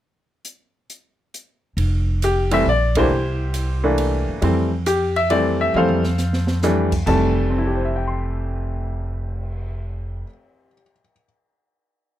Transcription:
0.45 closed hi-hat medium
0.90 closed hi-hat soft
1.34 closed hi-hat soft
1.77 2.62 F1 medium
1.77 kick soft
1.77 ride medium
2.22 2.54 G4 medium
2.22 hi-hat pedal medium
2.22 ride medium
2.51 2.65 E3 medium
2.51 2.65 G3 medium
2.51 2.64 A3 medium
2.51 2.65 C4 medium
2.51 2.66 E5 medium
2.51 ride medium
2.65 3.07 A#1 medium
2.65 2.98 D5 medium
2.95 3.09 E3 medium
2.95 3.09 A3 medium
2.95 3.09 A#3 medium
2.95 3.09 D4 medium
2.95 4.26 E4 medium
2.95 4.26 G4 medium
2.95 4.26 C5 medium
2.95 kick medium
2.95 ride medium
3.09 4.24 C2 medium
3.54 hi-hat pedal medium
3.54 ride medium
3.84 4.39 E3 medium
3.84 4.40 A3 medium
3.84 4.40 A#3 medium
3.84 4.40 D4 medium
3.98 ride medium
4.28 4.41 F#2 medium
4.42 5.70 F2 medium
4.42 4.69 E3 medium
4.42 4.69 G3 soft
4.42 4.69 A3 soft
4.42 4.70 C4 medium
4.42 kick soft
4.42 ride medium
4.86 5.14 G4 medium
4.86 hi-hat pedal medium
4.86 ride medium
5.16 5.31 E5 medium
5.16 ride soft
5.30 5.74 E3 medium
5.30 5.75 G3 soft
5.30 5.75 A3 medium
5.30 5.75 C4 medium
5.30 5.61 D5 medium
5.30 ride soft
5.61 5.74 E5 medium
5.74 7.02 F2 medium
5.74 6.02 E3 soft
5.74 6.02 G3 soft
5.74 6.02 A3 soft
5.74 6.03 C4 medium
5.74 6.60 A4 medium
5.74 6.60 C5 medium
5.74 6.60 F5 medium
5.74 mid tom soft
5.88 mid tom soft
6.04 snare medium
6.18 snare soft
6.18 hi-hat pedal medium
6.33 snare medium
6.47 snare medium
6.63 6.90 E3 medium
6.63 6.90 G3 medium
6.63 6.90 A3 medium
6.63 6.90 D4 medium
6.63 snare medium
6.63 hi-hat pedal medium
6.92 kick medium
6.92 crash medium
7.06 10.21 F1 medium
7.06 10.25 F2 medium
7.06 10.26 E3 medium
7.06 10.27 G3 medium
7.06 10.27 A3 medium
7.06 10.22 A5 medium
7.06 kick medium
7.06 crash medium
7.36 cymbal swell soft
7.50 10.65 C4 soft
7.58 10.73 E4 soft
7.67 10.82 G4 soft
7.75 10.90 C5 soft
7.85 11.00 E5 soft
7.96 11.11 G5 soft
8.07 11.22 C6 soft

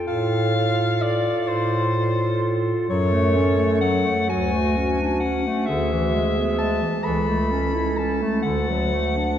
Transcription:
0.07 1.32 A2 medium
0.07 0.54 F4 medium
0.07 0.54 A4 medium
0.07 1.03 F5 loud
0.55 1.93 F4 medium
0.55 1.94 A4 medium
1.02 1.49 D5 loud
1.48 2.73 A2 medium
1.48 2.63 C5 loud
1.96 2.88 F4 medium
1.96 2.88 A4 medium
2.89 4.06 F#2 loud
2.89 3.14 F#3 medium
2.89 4.30 A4 medium
2.89 3.79 C#5 loud
3.12 3.38 A3 medium
3.36 3.59 C#4 medium
3.57 3.83 A3 medium
3.81 4.06 F#3 medium
3.81 4.28 F#5 loud
4.05 4.29 A3 medium
4.29 5.45 D2 medium
4.29 4.55 F#3 medium
4.29 5.51 F#4 medium
4.29 5.19 G#5 loud
4.53 4.78 A3 medium
4.77 5.02 C#4 medium
5.01 5.25 D4 medium
5.20 5.48 C#4 medium
5.20 5.67 F#5 loud
5.47 5.69 A3 medium
5.66 6.81 D2 loud
5.66 5.94 D3 medium
5.66 7.05 G#4 medium
5.66 6.58 E5 loud
5.93 6.17 E3 medium
6.15 6.39 G#3 medium
6.38 6.62 B3 medium
6.58 6.84 G#3 medium
6.58 7.05 A5 loud
6.82 7.05 E3 medium
7.04 8.21 C#2 medium
7.04 7.30 E3 medium
7.04 9.38 A4 medium
7.04 7.98 B5 loud
7.29 7.53 A3 medium
7.51 7.76 C#4 medium
7.74 8.00 E4 medium
7.97 8.24 C#4 medium
7.97 8.42 A5 loud
8.22 8.44 A3 medium
8.42 9.38 D2 medium
8.42 8.71 D3 medium
8.42 9.38 F#5 loud
8.70 8.95 F#3 medium
8.93 9.19 A3 medium
9.18 9.38 D4 medium

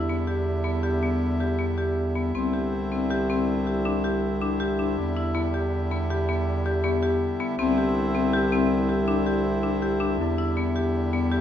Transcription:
0.00 2.31 E2 medium
0.00 2.31 D3 medium
0.00 2.32 G3 medium
0.00 7.55 E4 medium
0.09 0.25 B3 medium
0.27 0.58 G4 medium
0.64 0.80 B3 medium
0.83 0.99 G4 medium
1.03 1.34 B3 medium
1.40 1.56 G4 medium
1.59 1.75 B3 medium
1.78 2.09 G4 medium
2.16 2.31 B3 medium
2.34 4.94 C2 medium
2.34 7.55 D3 medium
2.34 2.51 C4 medium
2.34 4.96 C4 medium
2.54 2.85 G4 medium
2.92 3.07 C4 medium
3.11 3.26 G4 medium
3.30 3.61 C4 medium
3.67 3.83 G4 medium
3.85 4.01 D4 medium
4.04 4.35 G4 medium
4.41 4.57 D4 medium
4.60 4.76 G4 medium
4.79 5.10 D4 medium
4.97 7.41 E2 medium
4.97 7.56 G3 medium
5.17 5.32 E4 medium
5.35 5.51 B3 medium
5.35 5.76 E4 medium
5.54 5.85 G4 medium
5.92 6.07 B3 medium
6.10 6.26 G4 medium
6.29 6.60 B3 medium
6.66 6.81 G4 medium
6.84 7.00 B3 medium
6.84 7.25 G4 medium
7.03 7.34 G4 medium
7.40 7.56 B3 medium
7.57 10.15 C2 medium
7.57 11.41 D3 medium
7.57 10.17 C4 medium
7.57 7.74 C4 medium
7.57 11.41 E4 medium
7.78 8.09 G4 medium
8.15 8.30 C4 medium
8.33 8.49 G4 medium
8.52 8.83 C4 medium
8.89 9.04 G4 medium
9.08 9.23 D4 medium
9.26 9.57 G4 medium
9.63 9.79 D4 medium
9.82 9.98 G4 medium
10.00 10.31 D4 medium
10.19 11.41 E2 medium
10.19 11.41 G3 medium
10.19 10.61 E4 medium
10.38 10.54 E4 medium
10.57 10.72 B3 medium
10.76 11.07 G4 medium
11.13 11.29 B3 medium
11.32 11.41 G4 medium

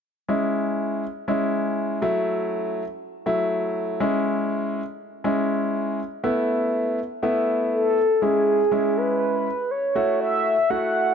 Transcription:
0.29 1.03 G#3 medium
0.29 1.03 C#4 medium
0.29 1.03 E4 medium
1.28 2.02 G#3 medium
1.28 2.02 C#4 medium
1.28 2.01 E4 medium
2.02 2.81 F#3 medium
2.02 2.82 A3 medium
2.02 2.82 E4 medium
3.26 4.00 F#3 medium
3.26 4.00 A3 medium
3.26 3.99 E4 medium
4.00 4.80 G#3 medium
4.00 4.80 C#4 medium
4.00 4.80 E4 medium
5.24 5.99 G#3 medium
5.24 5.99 C#4 medium
5.24 5.99 E4 medium
6.24 6.98 A3 medium
6.24 6.98 B3 medium
6.24 6.98 E4 medium
7.23 7.97 A3 medium
7.23 7.97 B3 medium
7.23 7.97 E4 medium
7.73 8.24 A4 medium
8.22 8.59 G#3 medium
8.22 8.59 C#4 medium
8.22 8.59 E4 medium
8.22 8.98 G#4 medium
8.71 9.46 G#3 medium
8.71 9.46 C#4 medium
8.71 9.46 E4 medium
8.97 9.72 B4 loud
9.71 10.20 C#5 loud
9.95 10.55 A3 medium
9.95 10.55 E4 medium
9.95 10.55 F#4 medium
10.21 10.71 E5 loud
10.70 11.14 A3 medium
10.70 11.14 E4 medium
10.70 11.14 F#4 medium
10.70 11.14 F#5 loud

